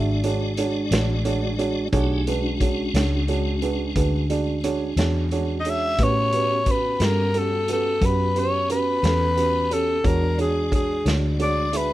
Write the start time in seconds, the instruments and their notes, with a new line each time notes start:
Already playing: fingered electric bass G#1, tonewheel organ G#3 D4 F#4 D5, upright piano D4 F#4 G#4 E5
0.24 upright piano D4 F#4 G#4 C#5, closed hi-hat
0.57 upright piano D4 F#4 G#4 C#5, closed hi-hat
0.91 fingered electric bass A1, upright piano D4 F#4 G#4 C#5, snare, closed hi-hat
1.25 upright piano D4 F#4 G#4 C#5, closed hi-hat
1.59 upright piano D4 F#4 G#4 C#5, closed hi-hat
1.92 fingered electric bass B1, tonewheel organ A3 D4 D#4 G4, upright piano D4 F#4 G#4 C#5, kick, closed hi-hat
2.27 tonewheel organ G#3 C#4 D4 F#4, upright piano D4 F#4 G#4 B4, closed hi-hat
2.61 upright piano D4 F#4 G#4 C#5, kick, closed hi-hat
2.94 fingered electric bass C#2, upright piano D4 F#4 G#4 C#5, snare, closed hi-hat
3.28 upright piano D4 F#4 G#4 C#5, closed hi-hat
3.62 upright piano D4 F#4 G#4 B4, closed hi-hat
3.96 fingered electric bass D2, upright piano D4 F#4 G#4 B4, kick, closed hi-hat
4.30 upright piano D4 F#4 G#4 D5, closed hi-hat
4.64 upright piano D4 F#4 G#4 C#5, closed hi-hat
4.96 fingered electric bass E2, upright piano D4 F#4 G#4 C#5, snare, closed hi-hat
5.31 upright piano D4 F#4 G#4 C#5, closed hi-hat
5.60 tenor saxophone D#5
5.65 upright piano D4 F#4 G#4 C#5, closed hi-hat
5.70 tenor saxophone E5
5.97 fingered electric bass A2, tonewheel organ B3 C#4 F#4 G4, upright piano C#4 F#4 G4 B4, kick, closed hi-hat
6.03 tenor saxophone C#5
6.33 upright piano C#4 F#4 G4 B4, closed hi-hat
6.66 upright piano C#4 F#4 G4 B4, kick, closed hi-hat
6.71 tenor saxophone B4
7.00 fingered electric bass G2, upright piano C#4 F#4 G4 A4, snare, closed hi-hat
7.05 tenor saxophone A#4
7.34 upright piano C#4 F#4 G4 A4, closed hi-hat
7.38 tenor saxophone A4
7.68 upright piano C#4 F#4 G4 B4, closed hi-hat
7.72 tenor saxophone A4
8.01 fingered electric bass F#2, upright piano C#4 F#4 G4 B4, kick, closed hi-hat
8.05 tenor saxophone B4
8.36 upright piano C#4 F#4 G4 B4, tenor saxophone C#5, closed hi-hat
8.69 upright piano C#4 F#4 G4 B4, tenor saxophone B4, closed hi-hat
9.03 fingered electric bass E2, upright piano C#4 F#4 G4 A4, snare, closed hi-hat
9.36 upright piano C#4 F#4 G4 B4, closed hi-hat
9.71 upright piano C#4 F#4 G4 C#5, tenor saxophone A4, closed hi-hat
10.04 fingered electric bass E2, tonewheel organ G#3 D4 F#4 D5, upright piano D4 F#4 G#4 C#5, tenor saxophone A#4, kick, closed hi-hat
10.38 upright piano D4 F#4 G#4 C#5, tenor saxophone G#4, closed hi-hat
10.71 upright piano D4 F#4 G#4 C#5, tenor saxophone G#4, kick, closed hi-hat
11.05 fingered electric bass D2, upright piano D4 F#4 G#4 C#5, snare, closed hi-hat
11.39 upright piano D4 F#4 G#4 C#5, tenor saxophone D5, closed hi-hat
11.73 upright piano D4 F#4 G#4 E5, tenor saxophone B4, closed hi-hat